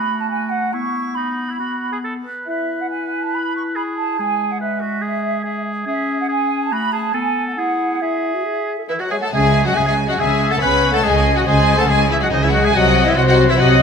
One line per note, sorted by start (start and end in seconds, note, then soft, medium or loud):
0.00 0.75 A3 soft
0.00 0.73 F#4 soft
0.00 0.18 B5 medium
0.20 0.30 A5 soft
0.29 0.51 G#5 soft
0.50 0.73 F#5 soft
0.71 1.59 B3 soft
0.71 1.16 E4 soft
0.71 1.16 C#6 medium
1.16 1.51 D#4 soft
1.16 2.03 B5 soft
1.50 1.59 E4 soft
1.59 2.24 B3 soft
1.59 1.92 F#4 soft
1.93 1.98 G#4 soft
2.04 2.14 A4 soft
2.26 2.47 B4 soft
2.47 4.14 E4 soft
2.47 3.77 B4 soft
2.47 2.77 E5 soft
2.80 2.91 F#5 soft
2.91 3.22 G#5 soft
3.23 3.34 A5 soft
3.34 3.55 B5 medium
3.56 3.62 C#6 soft
3.76 4.18 G#4 soft
3.76 3.82 B5 soft
3.96 4.18 A5 medium
4.19 5.84 G#3 soft
4.19 4.60 G#4 soft
4.19 4.51 G#5 medium
4.51 4.62 F#5 soft
4.61 4.82 B4 soft
4.61 5.61 E5 medium
4.81 5.03 F#4 soft
5.02 5.44 G#4 soft
5.44 5.86 G#4 soft
5.86 6.73 C#4 soft
5.86 6.26 G#4 soft
5.86 6.18 E5 medium
6.20 6.30 F#5 medium
6.29 6.74 G#4 soft
6.29 6.61 G#5 medium
6.62 6.72 A5 medium
6.72 7.13 A3 soft
6.72 6.92 F#4 soft
6.72 6.93 B5 medium
6.93 7.14 G#4 soft
6.93 7.15 A5 medium
7.14 7.59 B3 soft
7.14 7.60 A4 soft
7.14 7.47 G#5 medium
7.47 7.52 F#5 soft
7.57 7.97 E4 soft
7.57 8.02 G#4 soft
7.57 8.01 F#5 soft
8.01 8.36 E4 soft
8.01 8.72 G#4 soft
8.01 8.89 E5 soft
8.35 8.46 F#4 soft
8.45 8.78 G#4 soft
8.79 8.84 A4 soft
8.88 9.00 E3 soft
8.88 8.93 E4 soft
8.88 9.02 E4 soft
8.88 8.93 B4 soft
8.88 8.99 B4 soft
8.88 8.95 E5 soft
8.98 9.11 F#3 soft
8.98 9.03 F#4 soft
8.98 9.10 F#4 soft
8.98 9.04 D#5 soft
9.02 9.12 F#5 soft
9.09 9.16 G#3 soft
9.09 9.14 G#4 soft
9.09 9.16 G#4 soft
9.09 9.32 C#5 soft
9.09 9.16 E5 soft
9.09 9.23 G#5 soft
9.20 9.32 A3 soft
9.20 9.32 A4 soft
9.20 9.28 A4 soft
9.20 9.26 F#5 soft
9.20 9.34 A5 medium
9.31 9.71 C#2 medium
9.31 9.71 C#3 medium
9.31 9.64 G#3 medium
9.31 9.64 G#4 medium
9.31 9.65 G#4 medium
9.31 9.64 E5 medium
9.31 9.65 G#5 medium
9.64 9.76 F#3 soft
9.64 9.75 F#4 soft
9.64 9.79 F#4 soft
9.64 9.76 D#5 soft
9.64 9.76 F#5 soft
9.74 10.14 C#2 soft
9.74 10.14 C#3 medium
9.74 9.80 G#3 medium
9.74 9.83 G#4 medium
9.74 9.87 G#4 medium
9.74 9.86 E5 medium
9.74 9.87 G#5 medium
9.84 10.08 G#3 medium
9.84 9.92 G#4 medium
9.84 9.97 G#4 medium
9.84 9.93 E5 soft
9.84 10.08 G#5 medium
10.07 10.19 F#3 soft
10.07 10.18 F#4 soft
10.07 10.21 F#4 soft
10.07 10.12 D#5 medium
10.07 10.14 F#5 medium
10.18 10.56 C#2 soft
10.18 10.57 C#3 medium
10.18 10.51 G#3 medium
10.18 10.50 G#4 medium
10.18 10.53 G#4 medium
10.18 10.58 E5 medium
10.18 10.50 E5 medium
10.18 10.51 G#5 medium
10.50 10.62 A3 soft
10.50 10.61 A4 medium
10.50 10.62 A4 medium
10.50 10.55 F#5 medium
10.50 10.62 A5 medium
10.60 10.99 C#2 medium
10.60 10.99 C#3 medium
10.60 10.93 B3 medium
10.60 10.92 B4 medium
10.60 10.93 B4 medium
10.60 11.05 C#5 medium
10.60 10.93 G#5 medium
10.60 10.93 B5 medium
10.92 11.04 A3 medium
10.92 11.04 A4 medium
10.92 11.05 A4 soft
10.92 11.03 F#5 soft
10.96 11.05 A5 medium
11.03 11.42 C#2 medium
11.03 11.42 C#3 medium
11.03 11.36 G#3 medium
11.03 11.36 G#4 medium
11.03 11.35 D#5 medium
11.03 11.47 D#5 medium
11.03 11.37 G#5 medium
11.35 11.46 F#3 medium
11.35 11.46 F#4 soft
11.35 11.42 F#4 medium
11.35 11.46 D#5 medium
11.35 11.48 F#5 medium
11.46 11.84 C#2 medium
11.46 11.84 C#3 medium
11.46 11.78 G#3 medium
11.46 11.77 G#4 medium
11.46 11.78 G#4 medium
11.46 11.89 C5 medium
11.46 11.78 D#5 medium
11.46 11.78 G#5 medium
11.77 11.88 A3 medium
11.77 11.89 A4 medium
11.77 11.89 F#5 medium
11.77 11.90 A5 medium
11.87 12.27 C#2 medium
11.87 12.27 C#3 medium
11.87 12.10 G#3 medium
11.87 12.10 G#4 medium
11.87 12.32 G#4 medium
11.87 11.99 G#4 medium
11.87 12.11 D#5 medium
11.87 12.11 G#5 medium
12.09 12.21 E3 medium
12.09 12.14 E4 soft
12.09 12.21 E4 medium
12.09 12.22 C#5 soft
12.09 12.16 E5 medium
12.20 12.26 F#3 soft
12.20 12.25 F#4 medium
12.20 12.27 F#4 medium
12.20 12.33 D#5 soft
12.20 12.27 F#5 medium
12.30 12.69 C#2 medium
12.30 12.70 C#3 medium
12.30 12.37 D#3 medium
12.30 12.34 D#4 medium
12.30 12.43 D#4 medium
12.30 12.74 G#4 medium
12.30 12.43 C5 medium
12.30 12.43 D#5 medium
12.42 12.47 E3 medium
12.42 12.53 E4 medium
12.42 12.48 E4 soft
12.42 12.48 C#5 medium
12.42 12.54 E5 medium
12.52 12.57 F#3 medium
12.52 12.64 F#4 medium
12.52 12.66 F#4 medium
12.52 12.63 D#5 medium
12.52 12.64 F#5 medium
12.62 12.74 G#3 medium
12.62 12.74 G#4 medium
12.62 12.76 G#4 soft
12.62 12.75 E5 medium
12.62 12.75 G#5 medium
12.74 13.12 C2 medium
12.74 13.12 C3 medium
12.74 13.06 F#3 medium
12.74 13.06 F#4 medium
12.74 13.17 D#5 medium
12.74 13.06 D#5 medium
12.74 13.06 F#5 medium
13.05 13.16 E3 medium
13.05 13.16 E4 medium
13.05 13.19 E4 medium
13.05 13.17 C#5 medium
13.05 13.18 E5 medium
13.16 13.55 C2 medium
13.16 13.54 C3 medium
13.16 13.24 F#3 medium
13.16 13.26 F#4 medium
13.16 13.27 F#4 medium
13.16 13.59 C5 medium
13.16 13.22 D#5 medium
13.16 13.22 F#5 medium
13.25 13.47 F#3 medium
13.25 13.48 F#4 medium
13.25 13.52 F#4 medium
13.25 13.35 D#5 medium
13.25 13.37 F#5 medium
13.48 13.59 E3 medium
13.48 13.59 E4 medium
13.48 13.62 E4 medium
13.48 13.60 C#5 medium
13.48 13.60 E5 medium
13.58 13.82 C2 medium
13.58 13.82 C3 medium
13.58 13.82 F#3 medium
13.58 13.82 F#4 medium
13.58 13.82 D#5 medium
13.58 13.82 F#5 medium